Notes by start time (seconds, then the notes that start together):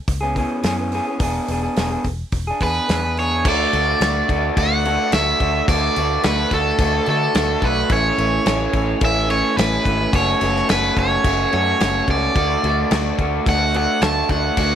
0.08 C#2, kick, open hi-hat
0.21 B3 C#4 G#4
0.35 E3 B3 C#4 G#4, kick, open hi-hat
0.63 F#2 E3 B3 C#4 G#4, snare, open hi-hat
0.77 B3 C#4 G#4
0.92 E3 B3 C#4 G#4, open hi-hat
1.07 B3 C#4 G#4
1.19 E1 B3 D4 G#4, kick, open hi-hat
1.48 E1 B3 D4 G#4, open hi-hat
1.63 D4 G#4
1.76 E1 B3 D4 G#4, snare, open hi-hat
1.90 G#4
1.94 D4
2.04 E1, muted clean electric guitar stroke, kick, open hi-hat
2.32 E1, kick, open hi-hat
2.47 D4 G#4
2.60 E2 B3 D4 G#4 B4, kick, open hi-hat
2.88 E2 B3 D4 G#4, snare, open hi-hat
3.03 D4 G#4
3.17 B3 D4 G#4 C#5, open hi-hat
3.31 D4 G#4
3.45 D2 A3 D4 F#4 D5, kick, crash
3.73 D2 A3 D4 F#4, crash
4.01 D2 A3 D4 F#4, snare, crash
4.29 D2 A3 D4 F#4, kick, crash
4.56 D2 A3 D4 F#4 F#5, kick, crash
4.85 A3 D4 F#4, crash
5.12 D2 A3 D4 F#4 E5, snare, crash
5.40 D2 A3 D4 F#4, kick, crash
5.68 D2 A3 D4 F#4 D5, kick, crash
5.96 D2 A3 D4 F#4, crash
6.23 D2 A3 D4 F#4 B4, snare, crash
6.51 D2 A3 D4 F#4 A4, kick, crash
6.79 D2 A3 D4 F#4, kick, crash
7.06 D3 A3 D4 F#4 A4, crash
7.34 D2 A3 D4 F#4, snare, crash
7.62 B1 A3 D4 F#4 B4, kick, crash
7.90 A1 E3 A3 C#4 C#5, kick, crash
8.18 A1 E3 A3 C#4, crash
8.45 A1 E3 A3 C#4, snare, crash
8.73 A1 E3 A3 C#4, kick, crash
9.01 A1 E3 A3 C#4, kick, crash
9.05 E5
9.29 E3 A3 C#4 C#5, crash
9.57 A1 E3 A3 C#4 B4, snare, crash
9.85 G#1 E3 A3 C#4, kick, crash
10.11 F#1 A3 C#4 F#4, kick, crash
10.16 C#5
10.41 F#1 A3 C#4 F#4, crash
10.56 snare
10.67 F#1 A3 C#4 F#4 B4, snare, crash
10.95 F#1 A3 C#4 F#4, kick, crash
10.99 C#5
11.23 F#1 A3 C#4 F#4, kick, crash
11.51 F#2 A3 C#4 F#4 C#5, crash
11.79 F#1 A3 C#4 F#4, snare, crash
12.08 C#2 A3 C#4 F#4 D5, kick, crash
12.35 D2 A3 D4 F#4, kick, crash
12.63 D2 A3 D4 F#4, crash
12.91 D2 A3 D4 F#4, snare, crash
13.19 D2 A3 D4 F#4, kick, crash
13.46 D2 A3 D4 F#4 F#5, kick, crash
13.74 A3 D4 F#4 F#5, crash
14.02 D2 A3 D4 F#4 A5, snare, crash
14.29 D2 A3 D4 F#4 F#5, kick, crash
14.57 D2 A3 D4 F#4 F#5, kick, crash